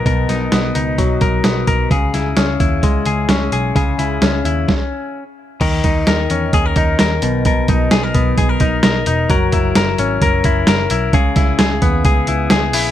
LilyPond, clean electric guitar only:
\new Staff \with { instrumentName = "Clean electric guitar" } { \time 4/4 \key b \major \tempo 4 = 130 <b, fis b dis' ais'>8 dis'8 b8 dis'8 fis8 ais'8 b8 ais'8 | <cis gis'>8 e'8 cis'8 e'8 gis8 gis'8 cis'8 gis'8 | <cis gis'>8 e'8 cis'8 e'8 r2 | <dis ais'>8 dis'8 ais'8 cis'8 gis'16 ais'16 dis'8 ais'8 b,8 |
<b, ais'>8 dis'8 gis'16 ais'16 b8 gis'16 ais'16 dis'8 ais'8 dis'8 | <fis ais'>8 e'8 ais'8 cis'8 ais'8 e'8 ais'8 e'8 | <cis gis'>8 e'8 gis'8 b8 gis'8 e'8 gis'8 e'8 | }